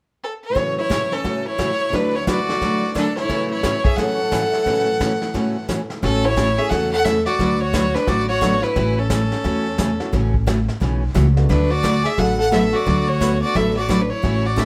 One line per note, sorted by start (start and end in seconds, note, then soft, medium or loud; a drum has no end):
0.24 0.33 A4 medium
0.44 0.75 C#5 medium
0.50 1.89 A2 medium
0.50 1.91 E3 soft
0.55 0.76 A2 soft
0.55 0.76 C#3 medium
0.55 0.77 E3 soft
0.55 1.91 F#3 soft
0.55 0.77 A3 soft
0.55 0.77 C#4 medium
0.55 1.94 C#4 soft
0.55 0.77 F#4 medium
0.55 brush sweep soft
0.55 kick soft
0.55 snare soft
0.61 1.93 B4 medium
0.78 1.14 E4 medium
0.78 1.14 C#5 medium
0.89 1.01 A2 medium
0.89 1.01 C#3 medium
0.89 1.01 E3 medium
0.89 1.01 A3 medium
0.89 1.01 C#4 medium
0.89 1.01 F#4 medium
0.89 kick soft
0.89 snare medium
0.89 hi-hat pedal medium
1.12 1.46 C#4 medium
1.12 1.46 A4 medium
1.12 snare soft
1.24 1.45 A2 soft
1.24 1.45 C#3 soft
1.24 1.45 E3 soft
1.24 1.45 A3 medium
1.24 1.46 C#4 medium
1.24 1.46 F#4 medium
1.24 brush sweep soft
1.24 kick soft
1.24 snare soft
1.47 1.95 E4 medium
1.47 1.96 C#5 medium
1.58 1.69 A2 medium
1.58 1.69 C#3 medium
1.58 1.70 E3 medium
1.58 1.70 A3 medium
1.58 1.70 C#4 medium
1.58 1.70 F#4 medium
1.58 kick soft
1.58 snare soft
1.58 hi-hat pedal soft
1.90 3.28 D2 medium
1.90 3.28 D3 medium
1.90 2.14 D3 medium
1.90 2.47 F#3 medium
1.90 2.14 F#3 soft
1.90 2.14 A3 soft
1.90 2.14 D4 soft
1.90 2.18 D4 medium
1.90 3.30 E4 medium
1.90 2.14 F#4 soft
1.90 2.14 B4 medium
1.90 brush sweep soft
1.90 kick soft
1.90 snare soft
1.95 3.30 B4 medium
1.95 2.17 B4 medium
2.15 2.28 E4 medium
2.15 2.27 C#5 medium
2.27 2.38 D3 medium
2.27 2.38 F#3 medium
2.27 2.38 A3 medium
2.27 2.38 D4 medium
2.27 2.38 F#4 medium
2.27 2.92 F#4 medium
2.27 2.38 B4 medium
2.27 2.92 D5 medium
2.27 kick soft
2.27 snare medium
2.27 hi-hat pedal medium
2.48 3.28 F#3 soft
2.48 3.29 A3 soft
2.48 3.30 F#4 soft
2.48 3.30 D5 medium
2.48 snare soft
2.61 2.82 D3 medium
2.61 2.82 F#3 soft
2.61 2.83 A3 soft
2.61 2.83 D4 medium
2.61 2.83 F#4 medium
2.61 2.83 B4 medium
2.61 brush sweep soft
2.61 kick soft
2.61 snare soft
2.95 3.06 D3 medium
2.95 3.06 F#3 medium
2.95 3.06 A3 medium
2.95 3.06 D4 medium
2.95 3.15 D4 medium
2.95 3.06 F#4 medium
2.95 3.16 A4 medium
2.95 3.07 B4 medium
2.95 kick soft
2.95 snare medium
2.95 hi-hat pedal soft
3.17 3.49 E4 medium
3.17 3.49 C#5 medium
3.17 snare soft
3.24 4.63 A2 medium
3.24 4.64 E3 medium
3.29 3.50 A2 medium
3.29 3.50 C#3 medium
3.29 3.50 E3 medium
3.29 3.95 F#3 soft
3.29 3.51 A3 medium
3.29 3.51 C#4 medium
3.29 4.64 C#4 medium
3.29 3.51 F#4 medium
3.29 brush sweep soft
3.29 kick soft
3.29 snare soft
3.35 4.65 B4 medium
3.51 3.85 E4 medium
3.51 3.87 C#5 medium
3.63 3.75 A2 medium
3.63 3.74 C#3 medium
3.63 3.75 E3 medium
3.63 3.75 A3 medium
3.63 3.75 C#4 medium
3.63 3.75 F#4 medium
3.63 kick soft
3.63 snare medium
3.63 hi-hat pedal medium
3.84 4.01 G#4 medium
3.84 3.98 E5 loud
3.84 kick medium
3.84 snare soft
3.96 4.19 A2 medium
3.96 4.19 C#3 medium
3.96 4.19 E3 medium
3.96 4.64 F#3 soft
3.96 4.66 A3 soft
3.96 4.19 A3 medium
3.96 4.19 C#4 medium
3.96 4.66 E4 soft
3.96 4.19 F#4 medium
3.96 5.69 A4 medium
3.96 4.56 C#5 soft
3.96 5.68 F#5 medium
3.96 brush sweep soft
3.96 kick soft
3.96 snare soft
4.15 4.26 C#6 soft
4.23 4.35 A5 soft
4.31 4.43 A2 medium
4.31 4.43 C#3 medium
4.31 4.43 E3 medium
4.31 4.43 A3 medium
4.31 4.43 C#4 medium
4.31 4.43 F#4 medium
4.31 4.46 G#5 medium
4.31 kick soft
4.31 snare medium
4.31 hi-hat pedal medium
4.40 4.54 F#5 medium
4.48 4.59 E5 soft
4.53 4.69 C#5 medium
4.53 snare soft
4.65 6.02 A2 soft
4.65 4.87 A2 medium
4.65 4.87 C#3 medium
4.65 5.19 E3 soft
4.65 4.87 E3 soft
4.65 6.02 F#3 soft
4.65 4.87 A3 soft
4.65 6.02 C#4 soft
4.65 4.87 C#4 medium
4.65 4.88 F#4 medium
4.65 6.03 B4 medium
4.65 brush sweep soft
4.65 kick soft
4.65 snare soft
5.00 5.11 A2 medium
5.00 5.11 C#3 medium
5.00 5.12 E3 medium
5.00 5.11 A3 medium
5.00 5.12 C#4 medium
5.00 5.12 F#4 medium
5.00 kick soft
5.00 snare medium
5.00 hi-hat pedal medium
5.21 6.01 E3 soft
5.21 6.02 A3 soft
5.21 6.03 A4 soft
5.21 snare soft
5.34 5.55 A2 soft
5.34 5.55 C#3 soft
5.34 5.55 E3 soft
5.34 5.55 A3 medium
5.34 5.56 C#4 medium
5.34 5.56 F#4 medium
5.34 brush sweep soft
5.34 kick soft
5.34 snare soft
5.68 5.80 A2 medium
5.68 5.80 C#3 medium
5.68 5.80 E3 medium
5.68 5.80 A3 medium
5.68 5.80 C#4 medium
5.68 5.80 F#4 medium
5.68 kick soft
5.68 snare soft
5.68 hi-hat pedal medium
5.90 snare soft
6.02 6.58 A1 medium
6.02 6.24 C#3 soft
6.02 6.24 E3 soft
6.02 6.24 A3 medium
6.02 6.26 C#4 medium
6.02 6.24 C#4 medium
6.02 6.24 F#4 medium
6.02 6.26 A4 loud
6.02 brush sweep soft
6.02 kick soft
6.02 snare soft
6.24 6.36 A3 medium
6.24 6.36 C#4 medium
6.24 6.60 E4 medium
6.24 6.36 E4 medium
6.24 6.36 F#4 medium
6.24 6.60 C#5 loud
6.36 6.48 C#3 medium
6.36 6.48 E3 medium
6.36 6.48 A3 medium
6.36 6.48 C#4 medium
6.36 6.48 F#4 medium
6.36 kick soft
6.36 snare medium
6.36 hi-hat pedal medium
6.58 6.70 A3 medium
6.58 6.70 C#4 medium
6.58 6.70 E4 medium
6.58 6.70 G#4 medium
6.58 6.71 G#4 medium
6.58 6.71 E5 medium
6.70 7.26 E2 medium
6.70 6.92 C#3 medium
6.70 6.92 E3 medium
6.70 6.92 A3 medium
6.70 6.92 C#4 medium
6.70 6.92 F#4 medium
6.70 6.91 A4 medium
6.70 6.91 F#5 medium
6.70 brush sweep medium
6.70 kick soft
6.70 snare soft
6.91 7.04 A4 medium
6.91 7.06 F#5 loud
7.04 7.16 C#3 medium
7.04 7.16 E3 medium
7.04 7.16 A3 medium
7.04 7.16 C#4 medium
7.04 7.16 F#4 medium
7.04 7.25 A4 medium
7.04 7.25 E5 medium
7.04 kick soft
7.04 snare medium
7.04 hi-hat pedal medium
7.26 7.60 F#4 medium
7.26 7.62 D5 medium
7.26 snare soft
7.39 7.94 D2 medium
7.39 7.60 D3 soft
7.39 7.60 F#3 medium
7.39 7.61 A3 medium
7.39 7.61 D4 medium
7.39 7.61 F#4 medium
7.39 7.61 B4 medium
7.39 brush sweep soft
7.39 kick soft
7.39 snare soft
7.60 7.97 F#4 medium
7.60 7.96 C#5 medium
7.73 7.84 D3 medium
7.73 7.84 F#3 medium
7.73 7.85 A3 medium
7.73 7.85 D4 medium
7.73 7.85 F#4 medium
7.73 7.85 B4 medium
7.73 kick soft
7.73 snare medium
7.73 hi-hat pedal medium
7.94 8.09 D4 medium
7.94 8.10 B4 medium
7.94 snare soft
8.07 8.62 A1 medium
8.07 8.28 D3 medium
8.07 8.29 F#3 medium
8.07 8.29 A3 medium
8.07 8.29 D4 medium
8.07 8.28 F#4 medium
8.07 8.29 F#4 medium
8.07 8.29 B4 medium
8.07 8.28 D5 medium
8.07 brush sweep medium
8.07 kick soft
8.07 snare soft
8.28 8.65 F#4 medium
8.28 8.65 C#5 medium
8.41 8.52 D3 medium
8.41 8.53 F#3 medium
8.41 8.61 A3 medium
8.41 8.53 A3 medium
8.41 8.61 B3 medium
8.41 8.53 D4 medium
8.41 8.61 D4 medium
8.41 8.61 F#4 medium
8.41 8.53 F#4 medium
8.41 8.53 B4 medium
8.41 kick soft
8.41 snare medium
8.41 hi-hat pedal soft
8.63 9.00 E4 medium
8.63 9.00 B4 medium
8.63 snare soft
8.76 9.31 A1 medium
8.76 8.97 C#3 medium
8.76 8.97 E3 medium
8.76 8.97 A3 medium
8.76 8.97 C#4 medium
8.76 8.97 F#4 medium
8.76 brush sweep soft
8.76 kick soft
8.76 snare soft
8.98 9.11 C#4 medium
8.98 9.11 A4 medium
9.10 9.21 C#3 medium
9.10 9.21 E3 medium
9.10 9.21 A3 medium
9.10 9.21 C#4 medium
9.10 10.09 C#4 medium
9.10 9.22 F#4 medium
9.10 10.09 A4 medium
9.10 kick soft
9.10 snare medium
9.10 hi-hat pedal medium
9.32 snare soft
9.44 9.99 E2 medium
9.44 9.65 C#3 soft
9.44 9.66 E3 soft
9.44 9.66 A3 medium
9.44 9.66 C#4 medium
9.44 9.66 F#4 medium
9.44 brush sweep soft
9.44 kick soft
9.44 snare soft
9.78 9.89 C#3 medium
9.78 9.90 E3 medium
9.78 9.90 A3 medium
9.78 9.90 C#4 medium
9.78 9.90 F#4 medium
9.78 kick soft
9.78 snare medium
9.78 hi-hat pedal medium
10.00 10.11 A3 medium
10.00 10.11 C#4 medium
10.00 10.11 E4 medium
10.00 10.11 F#4 medium
10.00 snare soft
10.12 10.67 A1 medium
10.12 10.34 C#3 medium
10.12 10.34 E3 soft
10.12 10.34 A3 medium
10.12 10.34 C#4 medium
10.12 10.34 F#4 medium
10.12 brush sweep soft
10.12 kick soft
10.12 snare soft
10.34 kick soft
10.47 10.58 C#3 medium
10.47 10.58 E3 medium
10.47 10.58 A3 medium
10.47 10.58 C#4 medium
10.47 10.58 F#4 medium
10.47 kick soft
10.47 snare medium
10.47 hi-hat pedal medium
10.68 snare soft
10.80 11.10 B1 medium
10.80 11.02 C#3 soft
10.80 11.02 E3 medium
10.80 11.02 A3 medium
10.80 11.02 C#4 medium
10.80 11.02 F#4 medium
10.80 brush sweep soft
10.80 kick soft
10.80 snare soft
11.14 11.44 C#2 medium
11.14 11.26 C#3 medium
11.14 11.26 E3 medium
11.14 11.26 A3 medium
11.14 11.26 C#4 medium
11.14 11.26 F#4 medium
11.14 kick soft
11.14 snare medium
11.14 hi-hat pedal medium
11.36 11.48 A3 medium
11.36 11.48 B3 medium
11.36 11.48 D4 medium
11.36 11.48 F#4 medium
11.36 snare soft
11.49 12.04 D2 medium
11.49 11.70 D3 medium
11.49 11.70 F#3 medium
11.49 11.70 A3 medium
11.49 11.71 D4 medium
11.49 11.72 D4 medium
11.49 11.70 F#4 medium
11.49 11.72 B4 medium
11.49 11.71 B4 medium
11.49 brush sweep soft
11.49 kick soft
11.49 snare soft
11.70 12.05 F#4 medium
11.70 12.07 D5 loud
11.83 11.94 D3 medium
11.83 11.94 F#3 medium
11.83 11.95 A3 medium
11.83 11.94 D4 medium
11.83 11.95 F#4 medium
11.83 11.95 B4 medium
11.83 kick soft
11.83 snare medium
11.83 hi-hat pedal medium
12.04 12.20 G#4 medium
12.04 12.20 E5 loud
12.04 snare soft
12.17 12.73 A1 medium
12.17 12.39 D3 medium
12.17 12.39 F#3 medium
12.17 12.39 A3 medium
12.17 12.39 D4 medium
12.17 12.39 F#4 medium
12.17 12.38 A4 medium
12.17 12.39 B4 medium
12.17 12.39 F#5 loud
12.17 brush sweep medium
12.17 kick soft
12.17 snare soft
12.38 12.50 A4 medium
12.38 12.51 F#5 loud
12.51 12.63 D3 medium
12.51 12.63 F#3 medium
12.51 12.71 A3 medium
12.51 12.63 A3 medium
12.51 12.71 B3 soft
12.51 12.71 D4 soft
12.51 12.63 D4 medium
12.51 12.71 F#4 medium
12.51 12.63 F#4 medium
12.51 12.75 A4 medium
12.51 12.63 B4 medium
12.51 12.76 E5 medium
12.51 kick soft
12.51 snare medium
12.51 hi-hat pedal soft
12.73 13.09 F#4 medium
12.73 13.10 D5 medium
12.86 13.41 D2 medium
12.86 13.07 D3 medium
12.86 13.07 F#3 medium
12.86 13.07 A3 medium
12.86 13.07 D4 medium
12.86 13.07 F#4 medium
12.86 13.08 B4 medium
12.86 brush sweep soft
12.86 kick soft
12.86 snare soft
13.08 13.42 F#4 medium
13.08 13.41 C#5 medium
13.20 13.32 D3 medium
13.20 13.32 F#3 medium
13.20 13.71 A3 medium
13.20 13.32 A3 medium
13.20 13.71 B3 medium
13.20 13.72 D4 soft
13.20 13.32 D4 medium
13.20 13.72 F#4 medium
13.20 13.32 F#4 medium
13.20 13.32 B4 medium
13.20 kick soft
13.20 snare medium
13.20 hi-hat pedal medium
13.42 13.58 F#4 medium
13.42 13.57 D5 medium
13.55 14.10 A1 medium
13.55 13.76 D3 medium
13.55 13.76 F#3 medium
13.55 13.76 A3 soft
13.55 13.76 D4 medium
13.55 13.76 F#4 medium
13.55 13.77 A4 medium
13.55 13.76 B4 medium
13.55 13.76 E5 medium
13.55 brush sweep medium
13.55 kick soft
13.55 snare soft
13.76 14.03 F#4 medium
13.76 14.03 D5 loud
13.88 14.00 D3 medium
13.88 14.00 F#3 medium
13.88 14.00 A3 medium
13.88 14.00 D4 medium
13.88 14.00 F#4 medium
13.88 14.00 B4 medium
13.88 kick soft
13.88 snare medium
13.88 hi-hat pedal medium
14.01 14.13 D4 soft
14.01 14.12 B4 medium
14.10 14.47 E4 medium
14.10 14.48 C#5 medium
14.22 14.65 A1 medium
14.22 14.44 C#3 medium
14.22 14.44 E3 medium
14.22 14.44 A3 soft
14.22 14.44 C#4 medium
14.22 14.44 F#4 medium
14.22 brush sweep soft
14.22 kick soft
14.22 snare soft
14.46 14.61 F#4 medium
14.46 14.61 D5 medium
14.56 14.65 C#3 medium
14.56 14.65 E3 medium
14.56 14.65 A3 medium
14.56 14.65 A3 soft
14.56 14.65 C#4 medium
14.56 14.65 C#4 soft
14.56 14.65 E4 soft
14.56 14.65 F#4 medium
14.56 14.65 A4 medium
14.56 14.65 E5 medium
14.56 kick soft
14.56 snare medium
14.56 hi-hat pedal medium